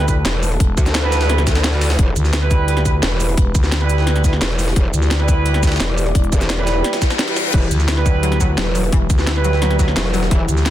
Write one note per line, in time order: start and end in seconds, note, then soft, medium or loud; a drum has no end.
0.00 0.24 D2 loud
0.00 10.70 E4 medium
0.00 10.70 G4 medium
0.00 1.98 A4 loud
0.08 0.16 G3 medium
0.08 0.16 E4 medium
0.08 0.16 B4 medium
0.08 kick medium
0.08 closed hi-hat medium
0.08 shaker medium
0.25 0.59 E1 medium
0.25 snare loud
0.25 closed hi-hat medium
0.43 closed hi-hat medium
0.43 open hi-hat medium
0.43 shaker medium
0.51 closed hi-hat soft
0.60 0.76 E1 loud
0.60 kick loud
0.60 closed hi-hat medium
0.77 1.97 D2 medium
0.77 kick loud
0.77 closed hi-hat medium
0.77 shaker medium
0.86 snare soft
0.86 closed hi-hat soft
0.86 shaker soft
0.95 snare loud
0.95 closed hi-hat medium
1.03 1.45 G3 loud
1.03 1.45 E4 loud
1.03 1.45 B4 loud
1.03 snare soft
1.12 snare loud
1.12 closed hi-hat medium
1.12 shaker medium
1.21 snare loud
1.21 closed hi-hat medium
1.29 snare medium
1.29 closed hi-hat medium
1.38 snare soft
1.38 closed hi-hat soft
1.47 kick medium
1.47 snare loud
1.47 closed hi-hat medium
1.47 shaker medium
1.55 snare loud
1.55 snare soft
1.55 closed hi-hat medium
1.64 snare loud
1.64 closed hi-hat medium
1.73 1.81 G3 medium
1.73 1.81 E4 medium
1.73 1.81 B4 medium
1.73 snare medium
1.81 snare loud
1.81 closed hi-hat medium
1.81 open hi-hat medium
1.81 shaker medium
1.90 snare loud
1.90 closed hi-hat medium
1.99 2.15 E1 medium
1.99 4.75 B4 medium
1.99 kick loud
1.99 closed hi-hat medium
2.16 3.01 D2 medium
2.16 closed hi-hat medium
2.16 shaker medium
2.25 snare soft
2.25 shaker soft
2.33 snare loud
2.33 closed hi-hat medium
2.42 2.83 G3 loud
2.42 2.83 E4 loud
2.42 2.83 B4 loud
2.42 snare soft
2.51 kick loud
2.51 closed hi-hat medium
2.51 shaker medium
2.68 closed hi-hat medium
2.77 snare soft
2.77 closed hi-hat soft
2.85 2.94 G3 medium
2.85 2.94 E4 medium
2.85 2.94 B4 medium
2.85 kick medium
2.85 closed hi-hat medium
2.85 shaker medium
3.03 3.36 E1 loud
3.03 snare loud
3.03 closed hi-hat medium
3.20 closed hi-hat medium
3.20 open hi-hat medium
3.20 shaker medium
3.29 closed hi-hat soft
3.37 3.54 E1 loud
3.37 kick loud
3.37 closed hi-hat medium
3.55 4.40 D2 loud
3.55 kick loud
3.55 closed hi-hat medium
3.55 shaker medium
3.63 snare soft
3.63 shaker soft
3.72 snare loud
3.72 closed hi-hat loud
3.72 closed hi-hat medium
3.81 4.22 G3 loud
3.81 4.22 E4 loud
3.81 4.22 B4 loud
3.81 snare soft
3.89 closed hi-hat medium
3.89 shaker medium
3.98 snare medium
4.07 snare medium
4.07 closed hi-hat medium
4.16 snare soft
4.16 closed hi-hat soft
4.24 4.32 G3 medium
4.24 4.32 E4 medium
4.24 4.32 B4 medium
4.24 kick medium
4.24 snare soft
4.24 closed hi-hat medium
4.24 shaker medium
4.33 snare soft
4.41 4.75 E1 medium
4.41 snare loud
4.41 closed hi-hat loud
4.41 closed hi-hat medium
4.50 snare medium
4.59 snare medium
4.59 closed hi-hat medium
4.59 open hi-hat medium
4.59 shaker medium
4.68 snare medium
4.76 4.92 E1 loud
4.76 7.53 D5 medium
4.76 kick loud
4.76 closed hi-hat loud
4.76 closed hi-hat medium
4.94 5.79 D2 loud
4.94 closed hi-hat medium
4.94 shaker medium
5.02 snare soft
5.02 shaker soft
5.11 snare loud
5.11 closed hi-hat loud
5.11 closed hi-hat medium
5.20 5.61 G3 loud
5.20 5.61 E4 loud
5.20 5.61 B4 loud
5.20 snare soft
5.28 kick loud
5.28 closed hi-hat medium
5.28 shaker medium
5.46 closed hi-hat medium
5.54 snare soft
5.54 closed hi-hat soft
5.63 5.71 G3 medium
5.63 5.71 E4 medium
5.63 5.71 B4 medium
5.63 kick medium
5.63 snare medium
5.63 closed hi-hat medium
5.63 shaker medium
5.67 snare medium
5.67 closed hi-hat medium
5.72 snare medium
5.72 closed hi-hat medium
5.76 snare medium
5.76 closed hi-hat medium
5.80 6.14 E1 loud
5.80 snare loud
5.80 closed hi-hat loud
5.80 closed hi-hat medium
5.98 closed hi-hat medium
5.98 open hi-hat medium
5.98 shaker medium
6.06 closed hi-hat soft
6.15 6.31 E1 loud
6.15 kick loud
6.15 closed hi-hat loud
6.15 closed hi-hat medium
6.24 closed hi-hat soft
6.32 6.83 E1 medium
6.32 kick loud
6.32 closed hi-hat medium
6.32 shaker medium
6.41 snare soft
6.41 closed hi-hat soft
6.41 shaker soft
6.50 snare loud
6.50 closed hi-hat medium
6.50 closed hi-hat loud
6.58 7.00 G3 loud
6.58 7.00 E4 loud
6.58 7.00 B4 loud
6.58 snare soft
6.67 snare loud
6.67 closed hi-hat medium
6.67 shaker medium
6.84 snare medium
6.84 closed hi-hat loud
6.84 closed hi-hat medium
6.84 reverse cymbal medium
6.93 snare loud
6.93 snare soft
6.93 closed hi-hat medium
6.93 closed hi-hat soft
7.02 kick medium
7.02 snare loud
7.02 closed hi-hat medium
7.02 shaker medium
7.10 snare loud
7.10 snare soft
7.10 closed hi-hat medium
7.10 shaker soft
7.19 snare loud
7.19 closed hi-hat loud
7.19 closed hi-hat medium
7.28 7.36 G3 medium
7.28 7.36 E4 medium
7.28 7.36 B4 medium
7.28 snare loud
7.28 closed hi-hat medium
7.36 snare loud
7.36 closed hi-hat medium
7.36 open hi-hat medium
7.36 shaker medium
7.45 7.58 G3 medium
7.45 7.58 E4 medium
7.45 7.58 B4 medium
7.45 snare soft
7.54 7.70 E1 medium
7.54 7.67 E3 loud
7.54 10.30 B4 loud
7.54 kick loud
7.54 closed hi-hat medium
7.54 closed hi-hat loud
7.54 crash medium
7.71 8.56 D2 medium
7.71 closed hi-hat medium
7.71 shaker medium
7.80 snare soft
7.80 shaker soft
7.88 7.94 E4 medium
7.88 snare loud
7.88 closed hi-hat loud
7.88 closed hi-hat medium
7.97 8.38 G3 loud
7.97 8.38 E4 loud
7.97 8.38 B4 loud
7.97 snare soft
8.06 8.14 F#3 medium
8.06 kick loud
8.06 closed hi-hat medium
8.06 shaker medium
8.23 8.32 F#3 medium
8.23 closed hi-hat medium
8.23 closed hi-hat loud
8.32 snare soft
8.32 closed hi-hat soft
8.40 8.49 F#3 loud
8.40 8.48 G3 medium
8.40 8.48 E4 medium
8.40 8.49 B4 medium
8.40 kick medium
8.40 closed hi-hat medium
8.40 shaker medium
8.58 8.91 E1 loud
8.58 8.66 F#3 medium
8.58 snare loud
8.58 closed hi-hat loud
8.58 closed hi-hat medium
8.75 8.84 F#3 medium
8.75 closed hi-hat medium
8.75 open hi-hat medium
8.75 shaker medium
8.84 closed hi-hat soft
8.92 9.08 E1 loud
8.92 9.05 E3 loud
8.92 kick loud
8.92 closed hi-hat medium
9.10 9.95 D2 medium
9.10 kick loud
9.10 closed hi-hat medium
9.10 shaker medium
9.19 snare soft
9.19 shaker soft
9.27 9.32 E4 medium
9.27 snare loud
9.27 closed hi-hat medium
9.27 closed hi-hat loud
9.36 9.77 G3 loud
9.36 9.77 E4 loud
9.36 9.77 B4 loud
9.36 snare soft
9.44 9.53 F#3 medium
9.44 closed hi-hat medium
9.44 shaker medium
9.53 snare soft
9.62 9.70 F#3 medium
9.62 snare medium
9.62 closed hi-hat loud
9.62 closed hi-hat medium
9.71 snare soft
9.71 closed hi-hat soft
9.79 9.88 F#3 loud
9.79 9.87 G3 medium
9.79 9.87 E4 medium
9.79 9.87 B4 medium
9.79 kick medium
9.79 snare soft
9.79 closed hi-hat medium
9.79 shaker medium
9.88 snare soft
9.96 10.30 E1 loud
9.96 10.05 F#3 medium
9.96 snare loud
9.96 closed hi-hat loud
9.96 closed hi-hat medium
10.05 snare medium
10.14 10.23 F#3 medium
10.14 snare medium
10.14 closed hi-hat medium
10.14 open hi-hat medium
10.14 shaker medium
10.23 snare medium
10.31 10.47 E1 loud
10.31 10.44 E3 loud
10.31 10.70 E5 loud
10.31 kick loud
10.31 closed hi-hat medium
10.49 10.70 D2 loud
10.49 closed hi-hat medium
10.49 shaker medium
10.57 snare soft
10.57 shaker soft
10.66 10.70 E4 medium
10.66 snare loud
10.66 closed hi-hat loud
10.66 closed hi-hat medium